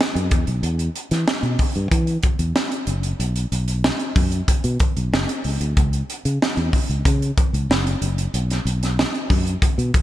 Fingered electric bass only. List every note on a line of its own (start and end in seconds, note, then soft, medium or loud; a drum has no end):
0.15 0.32 F#2 medium
0.32 0.44 E2 loud
0.48 0.60 B1 medium
0.63 0.88 E2 loud
1.11 1.24 E3 loud
1.43 1.55 B2 loud
1.76 1.88 G2 loud
1.91 2.16 E3 loud
2.39 2.52 E2 medium
2.87 3.12 F#1 medium
3.19 3.44 B1 loud
3.52 3.89 B1 medium
4.16 4.40 F#2 medium
4.48 muted fingered electric bass stroke medium
4.64 4.77 B2 loud
4.97 5.09 B1 medium
5.12 5.25 F#1 medium
5.45 5.57 C#2 medium
5.61 5.73 D2 medium
5.77 6.01 C#2 loud
6.25 6.37 C#3 medium
6.57 6.69 E2 medium
6.89 7.01 C#2 medium
7.05 7.30 C#3 loud
7.53 7.66 C#2 medium
7.70 7.94 F#1 loud
8.02 8.26 F#1 medium
8.34 8.58 B1 loud
8.65 9.02 B1 loud
9.30 9.54 F#2 medium
9.62 muted fingered electric bass stroke soft
9.78 9.90 B2 medium